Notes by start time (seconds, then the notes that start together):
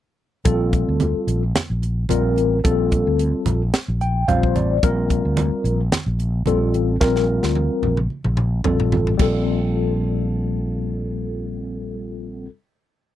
0.45 A#1 G3 C4 F4 A4, kick, closed hi-hat
0.73 kick, closed hi-hat
0.88 D2
1.00 closed hi-hat, high conga
1.15 muted fretless electric bass stroke
1.27 A#1, closed hi-hat
1.55 snare, closed hi-hat, muted conga, high conga
1.70 A#1
1.82 closed hi-hat, muted conga
2.09 A#1 G3 C4 F4 A#4, closed hi-hat, high conga
2.36 A1, closed hi-hat, muted conga
2.64 A#1 G3 C4 F4 A4, kick, closed hi-hat
2.92 kick, closed hi-hat
3.07 D2
3.19 closed hi-hat
3.34 muted fretless electric bass stroke
3.46 A#1, closed hi-hat, high conga, low conga
3.74 snare, closed hi-hat, muted conga
3.88 A#1
4.01 G5, closed hi-hat, muted conga
4.28 A#1 G3 C4 F4 C5 F5, closed hi-hat, high conga, low conga
4.43 kick
4.55 A1 D5, closed hi-hat, muted conga, high conga
4.83 A#1 G3 C4 F4 A#4, kick, closed hi-hat
5.10 kick, closed hi-hat
5.25 D2
5.37 closed hi-hat, high conga
5.64 A#1, closed hi-hat
5.92 snare, closed hi-hat, muted conga, high conga
6.06 A#1
6.19 closed hi-hat, muted conga
6.46 A#1 G3 C4 F4 A4, closed hi-hat, high conga
6.74 A1, closed hi-hat, muted conga
7.01 A#1 G3 C4 F4 A#4, kick, snare
7.16 snare
7.43 D2, snare
7.55 high tom
7.70 muted fretless electric bass stroke
7.83 A#1, high tom, low conga
7.97 mid tom
8.10 muted conga
8.24 A#1, mid tom
8.37 mid tom, muted conga
8.64 A#1 G3 C4 F4 A4, mid tom, high conga, low conga
8.80 floor tom
8.92 A1, floor tom, muted conga, high conga
9.07 floor tom
9.17 A#1 G3 C4 F4, kick, crash, muted conga
9.22 A4